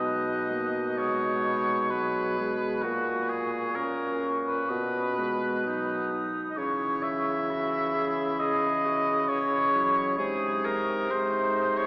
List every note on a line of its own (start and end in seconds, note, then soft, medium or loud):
0.00 2.86 B2 soft
0.00 0.54 F#3 soft
0.00 1.94 D#4 soft
0.00 0.99 D#5 medium
0.00 1.01 F#6 soft
0.52 1.00 A#3 soft
0.98 1.94 G#3 soft
0.98 1.92 C#5 medium
0.98 1.48 D#6 soft
1.46 2.84 B5 soft
1.90 2.40 F#3 soft
1.90 2.86 G#4 soft
1.90 2.84 B4 medium
2.38 2.84 G#3 soft
2.83 4.72 A#2 medium
2.83 3.78 A#3 soft
2.83 3.30 F#4 medium
2.83 3.59 F#4 soft
2.83 3.76 C#6 soft
3.29 3.77 G#4 medium
3.75 4.72 C#4 soft
3.75 5.35 F#4 soft
3.75 4.30 A#4 medium
3.75 4.70 C#6 soft
4.47 6.08 B4 medium
4.69 6.31 B2 medium
4.69 5.20 B3 soft
4.69 5.37 D#6 soft
5.18 5.67 G#3 soft
5.64 6.32 F#3 soft
5.64 6.08 D#4 medium
5.64 6.57 D#6 soft
6.11 6.61 D#4 medium
6.51 6.59 D#5 soft
6.56 10.15 C#3 medium
6.56 9.26 E3 soft
6.56 7.51 E4 soft
6.56 7.04 C#5 medium
6.56 7.46 C#6 soft
7.02 8.40 E5 medium
7.47 7.95 F#4 medium
7.47 9.30 B5 soft
7.94 8.40 G#4 soft
8.39 8.87 G#4 medium
8.39 9.30 D#5 medium
8.85 9.32 F#4 soft
9.28 9.76 E3 medium
9.28 10.19 E4 medium
9.28 10.18 C#5 medium
9.28 10.18 C#6 medium
9.75 10.20 F#3 medium
10.18 11.87 C3 medium
10.18 11.09 G#3 medium
10.18 11.09 D#4 soft
10.18 10.66 G#4 medium
10.18 11.72 D#6 medium
10.65 11.12 A#4 medium
11.09 11.87 G#3 medium
11.09 11.87 D#4 medium
11.09 11.79 C5 medium
11.77 11.87 C#5 medium